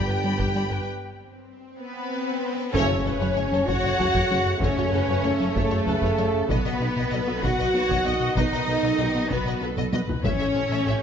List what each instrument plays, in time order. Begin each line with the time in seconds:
Already playing: tuba G1, cello section G2, cello G4, violin section G5
0.07 analog synth bass G2, synth arpeggio sound G4, viola section B4, violin section G5
0.22 analog synth bass G3, synth arpeggio sound D4, viola section G4 D5, violin section B5
0.39 analog synth bass G2, synth arpeggio sound G3, viola section B4, violin section G5, taiko
0.55 analog synth bass G3, synth arpeggio sound D4, viola section G4 D5, violin section B5
0.70 analog synth bass G2, viola section B4, violin section G5
0.87 swell
1.79 cello section B3, cello B3, french horn section B3, violin section B4
2.73 tuba F#1, double bass section F#1, analog synth bass F#2, trombone section C#3 A3, synth arpeggio sound F#3, cello section C#4, cello C#4, french horn section C#4, viola section A4, violin section C#5, taiko, impact
2.89 double bass section F#1, analog synth bass F#2, synth arpeggio sound F#4, violin section C#5
3.05 tuba F#1, double bass section F#1, analog synth bass F#2, synth arpeggio sound A3, violin section A4, viola section B4
3.21 double bass section F#1, analog synth bass F#2, synth arpeggio sound F#3, violin section C#5
3.36 tuba F#1, double bass section F#1, analog synth bass F#2, synth arpeggio sound A3, viola section C#5, violin section C#5
3.52 double bass section F#1, analog synth bass F#3, synth arpeggio sound C#4, violin section A4
3.67 tuba F#1, double bass section F#1, analog synth bass F#2, synth arpeggio sound F#3, french horn section F#4, cello F#4, cello section F#4, violin section C#5 F#5, taiko
3.84 double bass section F#1, analog synth bass F#2, synth arpeggio sound F#4, violin section C#5
3.99 tuba F#1, double bass section F#1, analog synth bass F#3, synth arpeggio sound C#4, violin section A4, taiko low
4.15 double bass section F#1, analog synth bass F#2, synth arpeggio sound F#3, violin section C#5, taiko
4.30 tuba F#1, double bass section F#1, analog synth bass F#3, synth arpeggio sound C#4, violin section C#5
4.46 analog synth bass F#2
4.61 tuba F#1, double bass section F#1, analog synth bass F#2, synth arpeggio sound F#3, cello C#4, french horn section C#4, cello section C#4, viola section A4, violin section C#5, taiko
4.77 double bass section F#1, analog synth bass F#2, synth arpeggio sound F#4, violin section C#5
4.92 tuba F#1, double bass section F#1, analog synth bass F#2, synth arpeggio sound A3, violin section A4, viola section B4
5.08 double bass section F#1, analog synth bass F#2, synth arpeggio sound F#3, violin section C#5
5.24 tuba F#1, double bass section F#1, analog synth bass F#2, synth arpeggio sound A3, viola section A4, violin section C#5
5.40 double bass section F#1, analog synth bass F#3, synth arpeggio sound C#4, violin section A4
5.55 tuba F#1, double bass section F#1, analog synth bass F#2, synth arpeggio sound F#3, cello section A3, cello A3, french horn section A3, violin section A4 C#5, viola section C#5, taiko
5.71 double bass section F#1, analog synth bass F#2, synth arpeggio sound F#4, violin section C#5
5.86 tuba F#1, double bass section F#1, analog synth bass F#3, synth arpeggio sound C#4, violin section A4, viola section B4, taiko low
6.02 double bass section F#1, analog synth bass F#2, synth arpeggio sound F#3, violin section C#5, taiko
6.18 tuba F#1, double bass section F#1, analog synth bass F#3, synth arpeggio sound C#4, viola section A4, violin section C#5
6.34 analog synth bass F#2
6.49 tuba B1, double bass section B1, analog synth bass B2, trombone section D#3 B3, cello section B3, french horn section B3, synth arpeggio sound B3, cello B3, viola section F#4, violin section B4 D#5, taiko
6.65 double bass section B1, analog synth bass B2, synth arpeggio sound B4, violin section D#5
6.80 tuba B1, double bass section B1, analog synth bass B2, synth arpeggio sound D#4, viola section G4, violin section B4
6.97 double bass section B1, analog synth bass B2, synth arpeggio sound B3, violin section D#5
7.12 tuba B1, double bass section B1, analog synth bass B2, synth arpeggio sound D#4, viola section A4, violin section D#5
7.27 double bass section B1, analog synth bass B3, synth arpeggio sound F#4, violin section B4
7.43 tuba B1, double bass section B1, analog synth bass B2, synth arpeggio sound B3, cello section F#4, french horn section F#4, cello F#4, viola section B4, violin section D#5 F#5, taiko
7.58 double bass section B1, analog synth bass B2, synth arpeggio sound B4, violin section D#5
7.74 tuba B1, double bass section B1, analog synth bass B3, synth arpeggio sound F#4, violin section B4, viola section C#5
7.89 double bass section B1, analog synth bass B2, synth arpeggio sound B3, violin section D#5, taiko
8.05 tuba B1, double bass section B1, analog synth bass B3, synth arpeggio sound F#4, viola section D#5, violin section D#5
8.20 analog synth bass B2
8.35 double bass section B1, tuba B1, analog synth bass B2, synth arpeggio sound B3, cello section D#4, cello D#4, french horn section D#4, viola section B4, violin section D#5, taiko
8.52 double bass section B1, analog synth bass B2, synth arpeggio sound B4, violin section D#5
8.68 double bass section B1, tuba B1, analog synth bass B2, synth arpeggio sound D#4, viola section A4, violin section B4
8.83 double bass section B1, analog synth bass B2, synth arpeggio sound B3, violin section D#5
8.99 double bass section B1, tuba B1, analog synth bass B2, synth arpeggio sound D#4, viola section G4, violin section D#5
9.14 double bass section B1, analog synth bass B3, synth arpeggio sound F#4, violin section B4
9.30 double bass section B1, tuba B1, analog synth bass B2, cello section B3, french horn section B3, cello B3, synth arpeggio sound B3, viola section F#4, violin section B4 D#5, taiko
9.46 double bass section B1, analog synth bass B2, synth arpeggio sound B4, violin section D#5
9.61 double bass section B1, tuba B1, analog synth bass B3, synth arpeggio sound F#4, viola section A4, violin section B4
9.77 double bass section B1, analog synth bass B2, synth arpeggio sound B3, violin section D#5, taiko mid
9.92 tuba B1, double bass section B1, analog synth bass B3, synth arpeggio sound F#4, viola section B4, violin section D#5, taiko high
10.07 analog synth bass B2, taiko low
10.23 tuba A1, double bass section A1, analog synth bass A2, trombone section E3 A3, synth arpeggio sound A3, cello section C#4, french horn section C#4, cello C#4, viola section C#5, violin section C#5 E5, taiko
10.39 double bass section A1, analog synth bass A2, synth arpeggio sound A4, violin section E5
10.54 tuba A1, double bass section A1, analog synth bass A2, synth arpeggio sound C#4, viola section A4, violin section C#5
10.70 double bass section A1, analog synth bass A2, synth arpeggio sound A3, violin section E5
10.86 tuba A1, double bass section A1, analog synth bass A2, synth arpeggio sound C#4, viola section G4, violin section E5